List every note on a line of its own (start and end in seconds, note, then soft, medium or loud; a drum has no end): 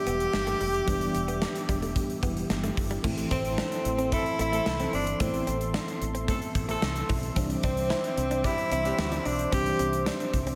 0.00 0.83 E3 medium
0.00 0.84 G3 medium
0.00 0.84 B3 medium
0.00 0.84 D4 medium
0.00 2.46 G4 loud
0.00 3.00 G4 medium
0.00 3.00 E5 medium
0.00 3.00 D6 medium
0.07 0.26 E1 medium
0.07 0.15 B3 medium
0.07 closed hi-hat medium
0.20 closed hi-hat medium
0.33 0.53 G1 medium
0.33 muted clean electric guitar stroke soft
0.33 snare loud
0.47 0.56 A3 medium
0.47 closed hi-hat soft
0.61 0.80 F1 medium
0.61 0.69 G3 medium
0.61 open hi-hat medium
0.74 closed hi-hat medium
0.87 1.07 E1 loud
0.87 2.20 E3 medium
0.87 0.96 E3 medium
0.87 2.20 G3 medium
0.87 2.20 B3 medium
0.87 2.21 D4 medium
0.87 kick loud
0.87 closed hi-hat medium
1.01 closed hi-hat medium
1.15 1.44 E1 medium
1.15 muted clean electric guitar stroke soft
1.15 closed hi-hat medium
1.28 1.37 B3 medium
1.28 closed hi-hat soft
1.42 muted clean electric guitar stroke soft
1.42 snare loud
1.55 closed hi-hat medium
1.69 1.98 E1 loud
1.69 1.77 G3 medium
1.69 kick medium
1.69 closed hi-hat medium
1.82 1.91 A3 medium
1.82 closed hi-hat medium
1.96 kick medium
1.96 closed hi-hat medium
2.10 closed hi-hat soft
2.22 2.42 E1 medium
2.22 3.01 E3 medium
2.22 3.04 G3 medium
2.22 3.04 B3 medium
2.22 2.31 B3 medium
2.22 3.04 E4 medium
2.22 kick loud
2.22 closed hi-hat medium
2.37 closed hi-hat medium
2.50 2.69 G1 medium
2.50 snare loud
2.64 2.72 A3 medium
2.64 closed hi-hat medium
2.77 2.97 G1 medium
2.77 muted clean electric guitar stroke soft
2.77 kick medium
2.77 open hi-hat medium
2.91 2.99 G3 medium
2.91 closed hi-hat medium
3.03 3.23 A1 loud
3.03 5.15 E3 medium
3.03 5.16 A3 medium
3.03 3.13 A3 medium
3.03 5.16 C4 medium
3.03 5.17 E4 medium
3.03 7.33 A4 medium
3.03 10.55 E5 medium
3.03 7.33 C6 medium
3.03 kick loud
3.03 crash medium
3.18 muted clean electric guitar stroke soft
3.18 closed hi-hat medium
3.31 3.60 A1 loud
3.31 3.40 C4 medium
3.31 4.14 C4 medium
3.31 kick medium
3.31 closed hi-hat medium
3.45 closed hi-hat soft
3.58 3.66 D4 medium
3.58 snare loud
3.71 muted clean electric guitar stroke soft
3.71 closed hi-hat medium
3.85 4.14 A1 loud
3.85 closed hi-hat medium
3.98 4.07 C4 medium
3.98 closed hi-hat medium
4.12 4.24 E3 medium
4.12 4.24 A3 medium
4.12 4.24 C4 medium
4.12 4.40 E4 loud
4.12 4.24 A4 medium
4.12 muted clean electric guitar stroke soft
4.12 kick medium
4.12 closed hi-hat medium
4.26 closed hi-hat soft
4.39 4.59 A1 medium
4.39 4.48 A3 medium
4.39 4.90 E4 loud
4.39 closed hi-hat medium
4.52 4.91 E3 medium
4.52 4.61 A3 medium
4.52 4.91 A3 medium
4.52 4.91 C4 medium
4.52 4.91 A4 loud
4.52 closed hi-hat medium
4.66 4.86 C2 medium
4.66 muted clean electric guitar stroke soft
4.66 snare loud
4.80 4.88 C4 medium
4.80 closed hi-hat medium
4.93 5.13 G1 medium
4.93 5.02 C4 medium
4.93 5.19 D4 medium
4.93 open hi-hat medium
5.07 closed hi-hat medium
5.19 5.40 A1 loud
5.19 7.32 E3 medium
5.19 7.32 A3 medium
5.19 5.29 A3 medium
5.19 5.27 B3 soft
5.19 5.71 C4 medium
5.19 7.33 E4 medium
5.19 kick loud
5.19 closed hi-hat medium
5.27 7.36 C4 medium
5.34 muted clean electric guitar stroke soft
5.34 closed hi-hat soft
5.47 5.76 A1 loud
5.47 5.56 C4 medium
5.47 closed hi-hat medium
5.61 closed hi-hat soft
5.74 5.83 D4 medium
5.74 snare loud
5.88 muted clean electric guitar stroke soft
5.88 closed hi-hat medium
6.01 6.31 A1 medium
6.01 closed hi-hat medium
6.15 6.23 C4 medium
6.15 closed hi-hat medium
6.28 6.40 E3 medium
6.28 6.40 A3 medium
6.28 6.37 A3 medium
6.28 6.40 C4 medium
6.28 6.40 A4 medium
6.28 kick medium
6.28 closed hi-hat medium
6.42 closed hi-hat soft
6.55 6.75 A1 loud
6.55 muted clean electric guitar stroke soft
6.55 kick medium
6.55 closed hi-hat medium
6.69 7.07 E3 medium
6.69 6.77 A3 medium
6.69 7.07 A3 loud
6.69 7.07 C4 medium
6.69 7.07 A4 loud
6.69 closed hi-hat medium
6.82 7.02 C2 medium
6.82 snare loud
6.96 closed hi-hat medium
7.09 7.29 B1 medium
7.09 7.18 E3 medium
7.09 kick medium
7.09 open hi-hat medium
7.23 closed hi-hat medium
7.35 7.56 C2 loud
7.35 9.48 E3 medium
7.35 9.48 G3 medium
7.35 7.45 C4 medium
7.35 9.49 C4 medium
7.35 9.49 D4 medium
7.35 10.55 C5 medium
7.35 10.55 D6 medium
7.35 kick loud
7.35 closed hi-hat medium
7.50 muted clean electric guitar stroke soft
7.50 closed hi-hat medium
7.63 7.93 C2 medium
7.63 8.47 C4 medium
7.63 7.72 D4 medium
7.63 kick loud
7.63 closed hi-hat medium
7.77 closed hi-hat soft
7.90 7.99 E4 medium
7.90 snare loud
8.04 muted clean electric guitar stroke soft
8.04 closed hi-hat medium
8.17 8.46 C2 loud
8.17 closed hi-hat medium
8.31 8.40 D4 medium
8.31 closed hi-hat medium
8.44 8.56 E3 medium
8.44 8.56 G3 medium
8.44 8.56 D4 medium
8.44 8.72 E4 loud
8.44 8.56 G4 medium
8.44 muted clean electric guitar stroke soft
8.44 kick loud
8.44 closed hi-hat medium
8.58 closed hi-hat soft
8.71 8.91 C2 loud
8.71 8.80 C4 medium
8.71 9.28 E4 loud
8.71 closed hi-hat medium
8.85 9.23 E3 medium
8.85 9.23 G3 medium
8.85 8.94 C4 medium
8.85 9.23 D4 medium
8.85 9.23 G4 loud
8.85 closed hi-hat medium
8.99 9.18 D2 medium
8.99 snare loud
9.12 9.21 D4 medium
9.12 closed hi-hat medium
9.25 9.45 B1 medium
9.25 9.34 D4 medium
9.25 9.53 D4 loud
9.25 open hi-hat medium
9.39 closed hi-hat medium
9.51 9.72 C2 loud
9.51 10.55 E3 medium
9.51 10.55 G3 medium
9.51 9.61 C4 medium
9.51 10.55 C4 medium
9.51 10.55 D4 medium
9.51 10.04 G4 loud
9.51 kick loud
9.51 closed hi-hat medium
9.66 muted clean electric guitar stroke soft
9.66 closed hi-hat medium
9.79 10.09 C2 medium
9.79 9.88 C4 medium
9.79 closed hi-hat medium
9.93 closed hi-hat soft
10.06 10.15 D4 medium
10.06 snare loud
10.06 tambourine medium
10.20 muted clean electric guitar stroke soft
10.20 closed hi-hat medium
10.34 10.55 C2 loud
10.34 kick medium
10.34 closed hi-hat medium
10.47 10.55 C4 medium
10.47 closed hi-hat soft